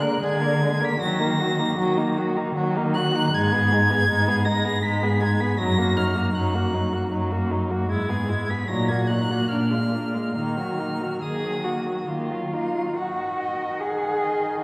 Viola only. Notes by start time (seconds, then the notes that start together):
0.02 A#3
0.21 G#3
0.41 A#3
0.61 G#3
0.80 A#3
1.01 F#3
1.20 A#3
1.39 F#3
1.59 A#3
1.78 F#3
1.98 A#3
2.18 F#3
2.38 A#3
2.57 F#3
2.77 A#3
2.95 F#3
3.14 A#3
3.33 G#3
3.52 B3
3.72 G#3
3.89 B3
4.09 G#3
4.27 B3
4.46 G#3
4.64 B3
4.84 G#3
5.03 B3
5.21 G#3
5.40 B3
5.59 F#3
5.78 A#3
5.97 F#3
6.16 A#3
6.35 F#3
6.55 A#3
6.74 F#3
6.93 A#3
7.12 F#3
7.32 A#3
7.51 F#3
7.71 A#3
7.90 G#3
8.09 B3
8.28 G#3
8.49 B3
8.69 F#3
8.89 A#3
9.10 F#3
9.30 A#3
9.50 A#3
9.70 G#3
9.92 A#3
10.14 G#3
10.36 A#3
10.56 F#3
10.78 A#3
11.01 F#3
11.23 A#3
11.45 F#3
11.65 A#3
11.86 F#3
12.07 A#3
12.30 F#3
12.53 A#3
12.75 F#3
12.97 D#3